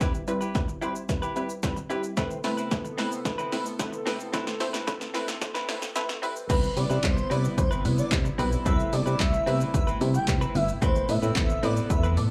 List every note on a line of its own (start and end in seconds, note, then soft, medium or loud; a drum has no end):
0.00 0.16 G3 loud
0.00 0.17 C4 loud
0.00 0.22 E4 medium
0.00 0.17 E4 loud
0.00 0.14 G4 medium
0.00 0.17 B4 loud
0.00 0.13 B4 medium
0.00 kick loud
0.00 snare medium
0.00 closed hi-hat medium
0.00 shaker medium
0.14 muted clean electric guitar stroke soft
0.14 shaker soft
0.28 0.44 G3 loud
0.28 0.44 C4 loud
0.28 0.44 E4 loud
0.28 0.44 B4 loud
0.28 muted clean electric guitar stroke soft
0.28 closed hi-hat medium
0.28 shaker medium
0.41 0.59 E4 medium
0.41 0.58 G4 medium
0.41 0.58 B4 medium
0.41 shaker medium
0.55 0.71 G3 medium
0.55 0.71 C4 medium
0.55 0.71 E4 medium
0.55 0.71 B4 loud
0.55 kick loud
0.55 snare medium
0.55 closed hi-hat medium
0.55 shaker medium
0.68 muted clean electric guitar stroke soft
0.68 shaker soft
0.81 0.97 G3 medium
0.81 0.98 C4 medium
0.81 1.03 E4 medium
0.81 0.98 E4 medium
0.81 0.95 G4 medium
0.81 0.94 B4 loud
0.81 0.98 C5 medium
0.81 closed hi-hat soft
0.81 shaker soft
0.95 muted clean electric guitar stroke soft
0.95 shaker medium
1.09 1.25 G3 medium
1.09 1.25 C4 medium
1.09 1.25 E4 medium
1.09 1.25 B4 medium
1.09 muted clean electric guitar stroke soft
1.09 kick loud
1.09 snare medium
1.09 closed hi-hat medium
1.09 shaker medium
1.22 1.34 E4 medium
1.22 1.35 G4 medium
1.22 1.36 B4 medium
1.22 shaker soft
1.36 1.52 G3 medium
1.36 1.52 C4 medium
1.36 1.52 E4 medium
1.36 1.50 G4 medium
1.36 1.52 B4 medium
1.36 1.48 B4 medium
1.36 closed hi-hat soft
1.36 shaker soft
1.49 muted clean electric guitar stroke soft
1.49 shaker medium
1.63 1.79 G3 loud
1.63 1.79 C4 loud
1.63 1.79 E4 loud
1.63 1.79 B4 loud
1.63 kick loud
1.63 snare medium
1.63 closed hi-hat medium
1.63 shaker medium
1.76 muted clean electric guitar stroke soft
1.76 shaker medium
1.90 2.06 G3 medium
1.90 2.06 C4 medium
1.90 2.11 E4 medium
1.90 2.06 E4 medium
1.90 2.03 G4 medium
1.90 2.06 G4 loud
1.90 2.02 B4 medium
1.90 closed hi-hat medium
1.90 shaker medium
2.03 muted clean electric guitar stroke soft
2.03 shaker medium
2.17 6.19 C3 medium
2.17 2.33 A3 loud
2.17 4.31 B3 medium
2.17 2.38 C4 medium
2.17 2.33 C4 loud
2.17 2.33 E4 loud
2.17 2.31 E4 medium
2.17 6.19 A4 medium
2.17 2.33 B4 loud
2.17 2.29 B4 medium
2.17 kick loud
2.17 snare medium
2.17 closed hi-hat medium
2.17 shaker medium
2.31 muted clean electric guitar stroke medium
2.31 shaker soft
2.44 2.60 A3 loud
2.44 2.60 C4 loud
2.44 2.60 E4 loud
2.44 2.60 B4 loud
2.44 muted clean electric guitar stroke soft
2.44 snare medium
2.44 open hi-hat medium
2.44 shaker medium
2.57 2.75 C4 medium
2.57 2.74 E4 medium
2.57 2.74 B4 medium
2.57 shaker medium
2.71 2.87 A3 medium
2.71 2.87 C4 medium
2.71 2.87 E4 medium
2.71 2.87 B4 medium
2.71 kick loud
2.71 snare medium
2.71 closed hi-hat medium
2.71 shaker medium
2.85 muted clean electric guitar stroke medium
2.85 shaker medium
2.98 3.14 A3 medium
2.98 3.19 C4 medium
2.98 3.14 C4 medium
2.98 3.14 E4 medium
2.98 3.11 E4 medium
2.98 3.14 B4 loud
2.98 3.10 B4 loud
2.98 snare medium
2.98 open hi-hat medium
2.98 shaker soft
3.11 muted clean electric guitar stroke medium
3.11 shaker medium
3.25 3.41 A3 medium
3.25 3.41 C4 medium
3.25 3.41 E4 medium
3.25 3.41 B4 medium
3.25 muted clean electric guitar stroke soft
3.25 kick loud
3.25 snare medium
3.25 closed hi-hat medium
3.25 shaker medium
3.38 3.50 C4 medium
3.38 3.52 E4 medium
3.38 3.52 B4 medium
3.38 shaker soft
3.52 3.68 A3 medium
3.52 3.68 C4 medium
3.52 3.65 E4 medium
3.52 3.68 E4 medium
3.52 3.68 B4 loud
3.52 3.64 B4 medium
3.52 snare medium
3.52 open hi-hat medium
3.52 shaker medium
3.65 muted clean electric guitar stroke soft
3.65 shaker medium
3.79 3.95 A3 loud
3.79 3.95 C4 loud
3.79 3.95 E4 loud
3.79 3.95 B4 loud
3.79 kick loud
3.79 snare loud
3.79 closed hi-hat medium
3.79 shaker medium
3.92 muted clean electric guitar stroke soft
3.92 shaker medium
4.06 4.22 A3 medium
4.06 4.27 C4 medium
4.06 4.22 C4 medium
4.06 4.22 E4 medium
4.06 4.19 E4 medium
4.06 4.22 B4 loud
4.06 4.18 B4 medium
4.06 snare loud
4.06 open hi-hat medium
4.06 shaker medium
4.19 muted clean electric guitar stroke soft
4.19 shaker medium
4.32 4.49 A3 loud
4.32 4.54 C4 medium
4.32 6.47 C4 medium
4.32 4.49 C4 loud
4.32 4.49 E4 loud
4.32 4.46 E4 loud
4.32 4.49 B4 loud
4.32 4.45 B4 loud
4.32 kick loud
4.32 snare loud
4.32 closed hi-hat medium
4.32 shaker medium
4.46 muted clean electric guitar stroke medium
4.46 snare loud
4.46 shaker soft
4.60 4.76 A3 loud
4.60 4.76 C4 loud
4.60 4.76 E4 loud
4.60 4.76 C5 loud
4.60 muted clean electric guitar stroke soft
4.60 snare loud
4.60 open hi-hat medium
4.60 shaker medium
4.73 4.91 C4 medium
4.73 4.91 E4 medium
4.73 4.90 B4 medium
4.73 snare loud
4.73 shaker medium
4.87 5.03 A3 medium
4.87 5.03 C4 medium
4.87 5.03 E4 medium
4.87 5.03 B4 medium
4.87 kick loud
4.87 snare loud
4.87 closed hi-hat medium
4.87 shaker medium
5.00 muted clean electric guitar stroke soft
5.00 snare loud
5.00 shaker medium
5.14 5.30 A3 medium
5.14 5.35 C4 medium
5.14 5.30 C4 medium
5.14 5.28 E4 medium
5.14 5.30 E4 medium
5.14 5.30 B4 loud
5.14 5.26 B4 loud
5.14 snare loud
5.14 open hi-hat medium
5.14 shaker soft
5.28 muted clean electric guitar stroke soft
5.28 snare loud
5.28 shaker medium
5.41 5.57 A3 medium
5.41 5.57 C4 medium
5.41 5.57 E4 medium
5.41 5.57 C5 loud
5.41 muted clean electric guitar stroke medium
5.41 kick loud
5.41 snare loud
5.41 closed hi-hat medium
5.41 shaker medium
5.54 5.67 C4 medium
5.54 5.68 E4 medium
5.54 5.69 B4 medium
5.54 snare loud
5.54 shaker soft
5.68 5.84 A3 medium
5.68 5.85 C4 medium
5.68 5.84 C4 medium
5.68 5.84 E4 medium
5.68 5.82 E4 medium
5.68 5.84 B4 loud
5.68 5.80 B4 medium
5.68 snare loud
5.68 open hi-hat medium
5.68 shaker medium
5.82 muted clean electric guitar stroke medium
5.82 snare loud
5.82 shaker medium
5.95 6.11 A3 loud
5.95 6.11 C4 loud
5.95 6.11 E4 loud
5.95 6.11 B4 loud
5.95 snare loud
5.95 closed hi-hat medium
5.95 shaker medium
6.09 muted clean electric guitar stroke medium
6.09 snare loud
6.09 shaker medium
6.22 6.49 E3 medium
6.22 6.44 G3 loud
6.22 6.43 C4 medium
6.22 6.44 C4 medium
6.22 6.44 E4 medium
6.22 6.36 E4 loud
6.22 6.49 B4 medium
6.22 6.45 B4 loud
6.22 6.35 B4 loud
6.22 open hi-hat medium
6.22 shaker medium
6.36 muted clean electric guitar stroke soft
6.36 shaker medium
6.49 6.67 C2 loud
6.49 10.78 C3 medium
6.49 6.65 G3 loud
6.49 8.64 B3 medium
6.49 6.65 B3 loud
6.49 6.74 C4 loud
6.49 6.65 C4 medium
6.49 10.78 E4 medium
6.49 6.66 E4 medium
6.49 6.75 E4 loud
6.49 6.73 B4 loud
6.49 6.66 B4 loud
6.49 6.75 B4 loud
6.49 kick loud
6.49 closed hi-hat medium
6.49 crash loud
6.49 shaker medium
6.63 shaker medium
6.76 6.86 C3 medium
6.76 6.92 G3 medium
6.76 6.92 B3 medium
6.76 6.92 C4 medium
6.76 6.93 E4 medium
6.76 6.93 B4 medium
6.76 7.00 D5 medium
6.76 muted clean electric guitar stroke soft
6.76 open hi-hat medium
6.76 shaker medium
6.90 6.99 C3 loud
6.90 7.02 C4 soft
6.90 7.03 E4 medium
6.90 7.03 B4 medium
6.90 shaker medium
7.03 7.21 C2 loud
7.03 7.19 G3 medium
7.03 7.20 B3 medium
7.03 7.20 C4 medium
7.03 7.20 E4 medium
7.03 7.27 C5 medium
7.03 7.20 D5 medium
7.03 muted clean electric guitar stroke soft
7.03 kick loud
7.03 snare loud
7.03 clap loud
7.03 closed hi-hat medium
7.03 shaker medium
7.17 muted clean electric guitar stroke soft
7.17 shaker medium
7.30 7.48 C3 loud
7.30 7.46 G3 medium
7.30 7.47 B3 medium
7.30 7.44 C4 medium
7.30 7.47 C4 medium
7.30 7.43 E4 medium
7.30 7.47 E4 medium
7.30 7.47 B4 medium
7.30 7.42 B4 medium
7.30 7.43 D5 medium
7.30 open hi-hat medium
7.30 shaker medium
7.44 7.56 C4 medium
7.44 7.57 E4 medium
7.44 7.58 B4 medium
7.44 shaker medium
7.57 7.86 G1 loud
7.57 7.74 G3 medium
7.57 7.74 B3 medium
7.57 7.74 C4 medium
7.57 7.74 E4 medium
7.57 7.74 B4 loud
7.57 7.70 C5 medium
7.57 muted clean electric guitar stroke soft
7.57 kick loud
7.57 closed hi-hat medium
7.57 shaker medium
7.71 7.83 C4 medium
7.71 7.84 E4 medium
7.71 7.85 B4 loud
7.71 shaker medium
7.85 8.02 C3 loud
7.85 8.00 G3 medium
7.85 8.01 B3 medium
7.85 8.01 C4 medium
7.85 8.01 E4 medium
7.85 8.01 B4 medium
7.85 muted clean electric guitar stroke soft
7.85 open hi-hat medium
7.85 shaker medium
7.98 8.10 D5 medium
7.98 muted clean electric guitar stroke medium
7.98 shaker medium
8.11 8.30 C3 loud
8.11 8.27 G3 medium
8.11 8.27 B3 medium
8.11 8.27 C4 medium
8.11 8.27 E4 medium
8.11 8.28 B4 medium
8.11 muted clean electric guitar stroke soft
8.11 kick loud
8.11 snare medium
8.11 clap loud
8.11 closed hi-hat medium
8.11 shaker medium
8.25 muted clean electric guitar stroke soft
8.25 shaker medium
8.38 8.56 B1 loud
8.38 8.54 G3 loud
8.38 8.55 B3 medium
8.38 8.52 C4 medium
8.38 8.55 C4 medium
8.38 8.55 E4 medium
8.38 8.52 E4 loud
8.38 8.55 B4 loud
8.38 8.51 B4 loud
8.38 open hi-hat medium
8.38 shaker medium
8.52 8.64 C4 medium
8.52 8.65 E4 medium
8.52 8.66 B4 medium
8.52 shaker medium
8.65 8.84 C2 loud
8.65 8.82 G3 loud
8.65 10.80 A3 medium
8.65 8.82 B3 medium
8.65 8.90 C4 medium
8.65 8.82 C4 medium
8.65 8.82 E4 loud
8.65 8.91 E4 medium
8.65 8.82 A4 loud
8.65 8.91 B4 loud
8.65 8.90 E5 loud
8.65 kick loud
8.65 closed hi-hat medium
8.65 shaker medium
8.80 shaker medium
8.92 9.02 C3 medium
8.92 9.08 G3 medium
8.92 9.09 B3 medium
8.92 9.09 C4 medium
8.92 9.09 E4 medium
8.92 9.09 A4 medium
8.92 9.17 D5 medium
8.92 muted clean electric guitar stroke soft
8.92 open hi-hat medium
8.92 shaker medium
9.06 9.15 C3 loud
9.06 9.18 C4 soft
9.06 9.19 E4 medium
9.06 9.20 B4 medium
9.06 shaker medium
9.19 9.38 C2 loud
9.19 9.36 G3 medium
9.19 9.36 B3 medium
9.19 9.36 C4 medium
9.19 9.36 E4 medium
9.19 9.36 B4 medium
9.19 9.44 E5 medium
9.19 kick loud
9.19 snare loud
9.19 clap loud
9.19 closed hi-hat medium
9.19 shaker medium
9.33 muted clean electric guitar stroke medium
9.33 shaker medium
9.46 9.65 C3 loud
9.46 9.63 G3 medium
9.46 9.63 B3 medium
9.46 9.61 C4 medium
9.46 9.63 C4 medium
9.46 9.63 E4 medium
9.46 9.60 E4 medium
9.46 9.63 B4 medium
9.46 9.59 B4 medium
9.46 9.59 E5 medium
9.46 open hi-hat medium
9.46 shaker soft
9.60 9.73 C4 medium
9.60 9.73 E4 medium
9.60 9.74 B4 medium
9.60 shaker medium
9.74 9.92 G1 medium
9.74 9.90 G3 loud
9.74 9.90 B3 medium
9.74 9.90 C4 medium
9.74 9.90 E4 medium
9.74 9.90 B4 loud
9.74 9.86 E5 loud
9.74 muted clean electric guitar stroke soft
9.74 kick loud
9.74 closed hi-hat medium
9.74 shaker medium
9.87 10.00 C4 medium
9.87 10.00 E4 medium
9.87 10.01 B4 medium
9.87 shaker soft
10.01 10.19 C3 loud
10.01 10.17 G3 medium
10.01 10.17 B3 medium
10.01 10.17 C4 medium
10.01 10.17 E4 medium
10.01 10.17 G4 medium
10.01 muted clean electric guitar stroke soft
10.01 open hi-hat medium
10.01 shaker medium
10.14 10.27 G5 medium
10.14 muted clean electric guitar stroke soft
10.14 shaker medium
10.27 10.46 C3 loud
10.27 10.44 G3 medium
10.27 10.44 B3 medium
10.27 10.44 C4 medium
10.27 10.44 E4 medium
10.27 10.44 B4 medium
10.27 muted clean electric guitar stroke medium
10.27 kick loud
10.27 snare medium
10.27 clap loud
10.27 closed hi-hat medium
10.27 shaker medium
10.41 10.54 C4 medium
10.41 10.55 E4 medium
10.41 10.55 B4 loud
10.41 shaker medium
10.55 10.73 G1 loud
10.55 10.71 G3 medium
10.55 10.71 B3 medium
10.55 10.71 C4 medium
10.55 10.71 E4 medium
10.55 10.71 B4 medium
10.55 10.67 E5 medium
10.55 muted clean electric guitar stroke soft
10.55 open hi-hat medium
10.55 shaker medium
10.69 muted clean electric guitar stroke soft
10.69 shaker medium
10.82 11.00 A1 loud
10.82 12.31 C3 medium
10.82 10.98 A3 loud
10.82 10.98 B3 medium
10.82 12.31 B3 medium
10.82 11.07 C4 medium
10.82 10.98 C4 loud
10.82 10.98 E4 medium
10.82 11.07 E4 loud
10.82 12.31 A4 medium
10.82 10.98 B4 loud
10.82 11.08 B4 loud
10.82 11.06 C5 loud
10.82 kick loud
10.82 closed hi-hat medium
10.82 shaker medium
10.96 shaker medium
11.09 11.18 A2 loud
11.09 11.25 A3 medium
11.09 11.25 B3 medium
11.09 11.25 C4 medium
11.09 11.25 E4 medium
11.09 11.25 B4 medium
11.09 11.33 E5 medium
11.09 muted clean electric guitar stroke medium
11.09 open hi-hat medium
11.09 shaker medium
11.22 11.31 A2 loud
11.22 11.35 C4 soft
11.22 11.35 E4 medium
11.22 11.36 B4 medium
11.22 shaker medium
11.35 11.54 A1 loud
11.35 11.52 A3 medium
11.35 11.52 B3 medium
11.35 11.52 C4 medium
11.35 11.52 E4 medium
11.35 11.52 B4 medium
11.35 11.60 E5 medium
11.35 kick loud
11.35 snare loud
11.35 clap loud
11.35 closed hi-hat medium
11.35 shaker medium
11.50 muted clean electric guitar stroke medium
11.50 shaker medium
11.63 11.81 A2 loud
11.63 11.79 A3 medium
11.63 11.79 B3 medium
11.63 11.77 C4 medium
11.63 11.79 C4 medium
11.63 11.79 E4 medium
11.63 11.76 E4 medium
11.63 11.79 B4 medium
11.63 11.75 B4 medium
11.63 11.75 D5 medium
11.63 open hi-hat medium
11.63 shaker soft
11.76 11.89 C4 medium
11.76 11.89 E4 medium
11.76 11.90 B4 medium
11.76 shaker medium
11.90 12.19 E2 loud
11.90 12.06 A3 loud
11.90 12.06 B3 medium
11.90 12.06 C4 medium
11.90 12.06 E4 medium
11.90 12.06 B4 loud
11.90 12.02 E5 medium
11.90 muted clean electric guitar stroke soft
11.90 kick loud
11.90 closed hi-hat medium
11.90 shaker medium
12.03 12.16 C4 medium
12.03 12.17 E4 medium
12.03 12.17 B4 medium
12.03 shaker soft
12.17 12.31 A2 loud
12.17 12.31 A3 medium
12.17 12.31 B3 medium
12.17 12.31 C4 medium
12.17 12.31 E4 medium
12.17 12.31 D5 medium
12.17 muted clean electric guitar stroke soft
12.17 open hi-hat medium
12.17 shaker medium